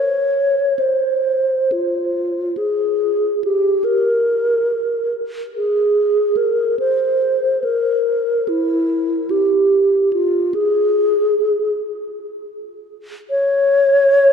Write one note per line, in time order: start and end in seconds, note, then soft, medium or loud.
0.00 0.81 C#5 soft
0.79 1.74 C5 soft
1.72 2.59 F4 soft
2.57 3.43 G#4 soft
3.44 3.86 G4 soft
3.84 5.13 A#4 soft
5.56 6.38 G#4 soft
6.37 6.79 A#4 soft
6.79 7.66 C5 soft
7.64 8.50 A#4 soft
8.48 9.32 E4 medium
9.31 10.12 G4 soft
10.13 10.56 F4 soft
10.54 11.73 G#4 medium
13.30 14.33 C#5 medium